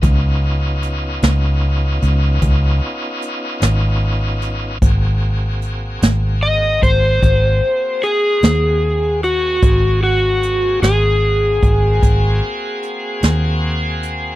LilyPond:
<<
  \new Staff \with { instrumentName = "Electric slide guitar" } { \time 12/8 \key aes \mixolydian \tempo 4. = 50 r1. | r2 ees''8 c''4. aes'4. ges'8~ | ges'8 ges'4 aes'1~ aes'8 | }
  \new Staff \with { instrumentName = "Tonewheel organ" } { \time 12/8 \key aes \mixolydian <ces' des' ees' f'>1. | <bes c' ges' aes'>1. | <bes c' ges' aes'>1. | }
  \new Staff \with { instrumentName = "Fingered electric bass" } { \clef bass \time 12/8 \key aes \mixolydian des,4. des,4 des,8 des,8 r4 aes,,4. | aes,,4. aes,,4 aes,,8 aes,,8 r4 ees,4. | aes,,4. aes,,4 aes,,8 aes,,8 r4 ees,4. | }
  \new DrumStaff \with { instrumentName = "Drums" } \drummode { \time 12/8 <hh bd>4 hh8 <hh sn>4 hh8 <hh bd>4 hh8 <hh sn>4 hh8 | <hh bd>4 hh8 <hh sn>4 <hh bd>8 <hh bd>4 hh8 <hh sn>4 hh8 | <hh bd>4 hh8 <hh sn>4 <hh bd>8 <hh bd>4 hh8 <hh sn>4 hh8 | }
>>